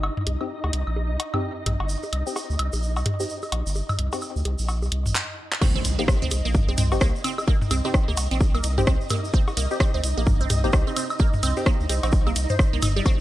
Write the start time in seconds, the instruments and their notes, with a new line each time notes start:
Already playing: sub bass G1, synth texture D#4 D#5
0.03 cowbell, high woodblock
0.17 mid tom
0.27 sub bass C2, closed hi-hat, low bongo
0.41 synth stab C4 D#4 G4, high woodblock
0.64 sub bass D2, cowbell, low bongo
0.73 sub bass C2, closed hi-hat
0.87 sub bass A#1, high woodblock
0.96 low bongo
1.10 sub bass C2
1.20 closed hi-hat, cowbell
1.34 synth stab C4 D#4 G4, mid tom, low bongo, high woodblock
1.66 sub bass A#1, closed hi-hat, mid tom, low bongo, high woodblock
1.80 sub bass G1, cowbell
1.89 shaker
2.03 low bongo, shaker
2.13 sub bass C2, closed hi-hat, high woodblock
2.27 synth stab C4 D#4 G4, shaker
2.36 cowbell, low bongo, shaker
2.50 sub bass D2, shaker
2.59 sub bass C2, closed hi-hat, high woodblock
2.73 sub bass A#1, low bongo, shaker
2.83 shaker
2.96 sub bass C2, cowbell, high woodblock, shaker
3.06 closed hi-hat, mid tom, low bongo
3.20 synth stab C4 D#4 G4, shaker
3.29 shaker
3.42 low bongo, high woodblock, shaker
3.52 sub bass A#1, closed hi-hat, cowbell
3.66 sub bass G1, shaker
3.75 low bongo, shaker
3.89 mid tom, high woodblock, shaker
3.99 sub bass C2, closed hi-hat
4.12 synth stab C4 D#4 G4, cowbell, low bongo, shaker
4.21 high woodblock, shaker
4.36 sub bass D2, shaker
4.45 sub bass C2, closed hi-hat, low bongo
4.59 sub bass A#1, shaker
4.68 cowbell, high woodblock, shaker
4.82 sub bass C2, low bongo, shaker
4.92 sub bass C2, closed hi-hat
5.06 sub bass G1, mid tom, shaker
5.15 clap
5.52 clap
5.62 synth arpeggio sound C4, synth texture D#4 D#5, kick, cowbell, crash, impact, low bongo, shaker
5.75 synth arpeggio sound C4, shaker
5.85 sub bass C2, closed hi-hat, shaker
5.99 synth arpeggio sound A#3, synth stab C4 D#4 G4, low bongo, shaker
6.08 kick, cross-stick, shaker
6.22 sub bass D2, synth arpeggio sound C4, shaker
6.31 sub bass C2, closed hi-hat, low bongo, shaker
6.45 sub bass A#1, synth arpeggio sound A#3, shaker
6.54 kick, mid tom, shaker
6.68 sub bass C2, synth arpeggio sound C4, low bongo, shaker
6.78 sub bass C2, synth arpeggio sound C4, closed hi-hat, mid tom, shaker
6.92 sub bass G1, synth stab C4 D#4 G4, cowbell, shaker
7.01 sub bass C2, synth arpeggio sound A#3, kick, cross-stick, low bongo, shaker
7.15 shaker
7.24 synth arpeggio sound C4, closed hi-hat, high woodblock, shaker
7.38 low bongo, high woodblock, shaker
7.48 synth arpeggio sound A#3, kick, shaker
7.62 mid tom, shaker
7.71 sub bass C2, synth arpeggio sound C4, closed hi-hat, low bongo, high woodblock, shaker
7.84 synth arpeggio sound C4, synth stab C4 D#4 G4, shaker
7.94 kick, cross-stick, shaker
8.08 sub bass D2, synth arpeggio sound A#3, low bongo, shaker
8.17 sub bass C2, closed hi-hat, cowbell, shaker
8.31 sub bass A#1, synth arpeggio sound C4, closed hi-hat, shaker
8.40 kick, low bongo, shaker
8.54 sub bass C2, synth arpeggio sound A#3, high woodblock, shaker
8.63 sub bass C2, closed hi-hat, shaker
8.78 sub bass G1, synth arpeggio sound C4, synth stab C4 D#4 G4, mid tom, low bongo, shaker
8.87 sub bass C2, synth arpeggio sound C4, kick, cross-stick, shaker
9.01 shaker
9.10 synth arpeggio sound A#3, closed hi-hat, mid tom, low bongo, high woodblock, shaker
9.24 shaker
9.33 synth arpeggio sound C4, kick, shaker
9.48 cowbell, low bongo, shaker
9.57 sub bass C2, synth arpeggio sound A#3, closed hi-hat, shaker
9.70 synth stab C4 D#4 G4, shaker
9.80 synth arpeggio sound C4, kick, cross-stick, low bongo, shaker
9.94 sub bass D2, synth arpeggio sound C4, shaker
10.03 sub bass C2, closed hi-hat, shaker
10.17 sub bass A#1, synth arpeggio sound A#3, low bongo, shaker
10.26 kick, mid tom, shaker
10.40 sub bass C2, synth arpeggio sound C4, shaker
10.50 sub bass C2, closed hi-hat, mid tom, low bongo, shaker
10.64 sub bass G1, synth arpeggio sound A#3, synth stab C4 D#4 G4, shaker
10.73 sub bass C2, kick, cross-stick, cowbell, shaker
10.87 synth arpeggio sound C4, low bongo, shaker
10.96 synth arpeggio sound C4, closed hi-hat, high woodblock, shaker
11.10 high woodblock, shaker
11.19 synth arpeggio sound A#3, kick, low bongo, shaker
11.33 mid tom, shaker
11.43 sub bass C2, synth arpeggio sound C4, closed hi-hat, high woodblock, shaker
11.56 synth stab C4 D#4 G4, low bongo, shaker
11.66 synth arpeggio sound A#3, kick, cross-stick, shaker
11.80 sub bass D2, shaker
11.89 sub bass C2, synth arpeggio sound C4, closed hi-hat, low bongo, shaker
12.03 sub bass A#1, synth arpeggio sound C4, closed hi-hat, cowbell, shaker
12.12 kick, shaker
12.26 sub bass C2, synth arpeggio sound A#3, low bongo, high woodblock, shaker
12.36 sub bass C2, closed hi-hat, shaker
12.49 synth arpeggio sound C5, mid tom, shaker
12.59 kick, cross-stick, low bongo, shaker
12.73 sub bass C2, synth arpeggio sound A#3, shaker
12.82 sub bass G1, synth arpeggio sound D#4, closed hi-hat, mid tom, high woodblock, shaker
12.96 synth arpeggio sound G3, low bongo, shaker
13.05 synth arpeggio sound C4, synth texture G4, kick, cowbell, low bongo, shaker